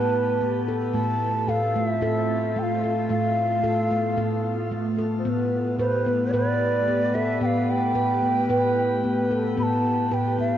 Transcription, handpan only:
Already playing: A2 B4
0.41 B3
0.68 A4
0.94 A2 A3
1.48 A2 A4
1.76 A3
2.01 A2 A4
2.56 A3
2.84 A4
3.09 A2 A3
3.64 A2 A4
3.91 A3
4.17 A2 A4
4.71 A3
4.98 A4
5.25 A2 B3
5.79 A2 B4
6.06 B3
6.33 A2 B4
6.88 B3
7.15 A4
7.41 A2 B3
7.95 A2 B4
8.23 B3
8.49 A2 B4
9.04 B3
9.31 A4
9.57 A2 B3
10.11 A2 B4
10.38 B3

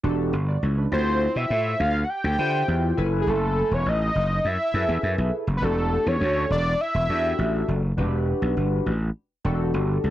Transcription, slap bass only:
0.04 E1
0.33 G1
0.63 C#2
0.92 D2
1.36 B2
1.50 A2
1.80 D2
2.24 D2
2.39 D3
2.68 E2
2.98 F#1
3.27 F#1
3.71 E1
3.86 A1
4.15 F#1
4.45 F#2
4.74 F#2
4.89 E2
5.03 F#2
5.18 B1
5.47 F#1
5.62 E1
6.06 E2
6.21 D2
6.50 E1
6.94 E1
7.09 E2
7.39 A1
7.68 F#1
7.98 E1
8.42 B1
8.57 G1
8.86 A1
9.45 E1
9.74 G1
10.04 C#2

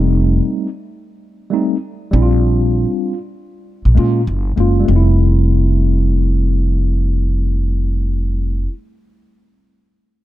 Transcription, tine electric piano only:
Already playing: G3 A3 C4 D#4
1.50 G3 A3 C4 D#4
2.11 G3 C4 D4
2.16 E4
2.22 F4
3.95 G#3 A#3 C#4 F4
4.56 G#3 A#3 C#4 F4
4.80 G3
4.85 A3
4.90 C4
4.96 E4

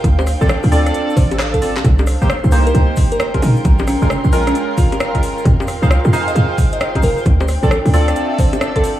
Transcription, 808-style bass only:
0.04 D2
0.41 A1
0.64 D2
1.17 A1
1.84 C2
2.22 G1
2.44 C2
2.75 C2
3.42 A#2
3.65 A#1
4.02 F1
4.24 A#1
5.45 F2
5.82 C2
6.05 F2
6.35 F2
7.03 F1
7.26 D2
7.63 A1
7.85 D2

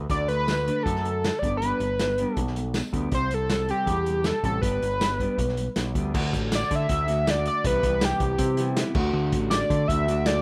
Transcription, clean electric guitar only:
0.11 D3 A3 D4
0.29 D3 A3
0.49 D3 A3
0.67 D3 A3 D4
0.86 D3 A3
1.05 D3 A3
1.24 D3 A3
1.43 G3 B3 D4
1.62 G3 B3 D4
1.81 G3
2.01 G3 B3
2.19 G3 B3 D4
2.38 G3 B3
2.57 G3 B3
2.76 G3 B3
2.93 G3 B3 D4
3.12 C3 G3 C4
3.32 C3 G3
3.51 C3 G3
3.69 C3 G3 C4
3.89 C3 G3
4.08 C3 G3
4.26 C3 G3
4.45 C3 G3 C4
4.63 G3 B3 D4
4.83 B3
5.01 G3 B3
5.20 G3 B3 D4
5.39 G3 B3
5.59 G3 B3
5.77 G3 B3
5.97 G3 B3 D4
6.14 D3 A3 D4 F#4
7.07 D3 A3 D4 F#4
7.26 D3 A3 D4 F#4
7.64 C3 E3 G3 B3 E4
8.57 C3 E3 G3 B3 E4
8.76 C3 E3 G3 B3 E4
8.95 D3 A3 D4 F#4
9.89 D3 A3 D4 F#4
10.07 D3 A3 D4 F#4

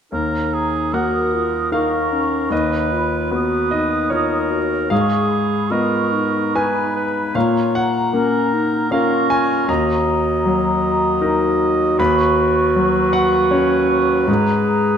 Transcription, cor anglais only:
0.12 A#4
0.53 G#4
0.93 A#4
1.72 A#4
2.51 B4
3.32 B4
4.11 A#4
4.91 G#4
5.71 A#4
6.56 B4
6.96 B4
7.36 C#5
8.15 A#4
8.92 A#4
9.69 D#5
11.99 B4

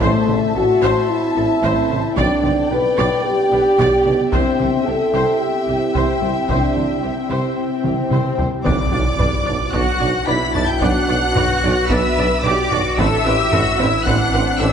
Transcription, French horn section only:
0.01 A3
0.55 F#4
1.09 E4
2.18 D4
2.71 B4
3.25 G4
4.32 C4
4.86 A4
5.40 G4
6.22 E4
6.50 D4
7.04 C4
8.65 B3 F#4
12.99 C4 E4

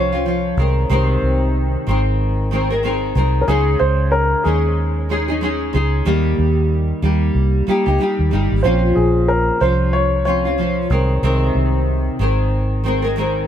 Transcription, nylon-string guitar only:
Already playing: F3 C4 C#4 F4
0.12 C4 C#4 F4
0.25 F3 C#4 F4
0.57 D#3 G#3 C4 A#4
0.89 C3 D#3 G#3 C4 A#4
1.87 D#3 G#3 C4 A#4
2.51 D#3 G#3 C4 A#4
2.70 G#3 C4 A#4
2.83 D#3 G#3 C4 A#4
3.15 D#3 G#3 C4 A#4
3.48 C#3 G#3 C#4 D#4 G#4
4.45 G#3 C#4 D#4 G#4
5.09 G#3 C#4 D#4 G#4
5.28 C#4 D#4 G#4
5.41 G#3 C#4 D#4 G#4
5.73 G#3 C#4 D#4 G#4
6.05 D#3 G3 A#3 D#4 G4
7.02 G3 A#3 D#4 G4
7.67 G3 A#3 D#4 G4
7.86 A#3 D#4 G4
7.99 G3 A#3 D#4 G4
8.31 G3 A#3 D#4 G4
8.64 A#2 F3 C4 C#4 F4
9.60 F3 C#4 F4
10.25 F3 C4 C#4 F4
10.45 C4 C#4 F4
10.58 F3 C#4 F4
10.90 D#3 G#3 C4 A#4
11.23 C3 D#3 G#3 C4 A#4
12.19 D#3 G#3 C4 A#4
12.84 D#3 G#3 C4 A#4
13.02 G#3 C4 A#4
13.16 D#3 G#3 C4 A#4

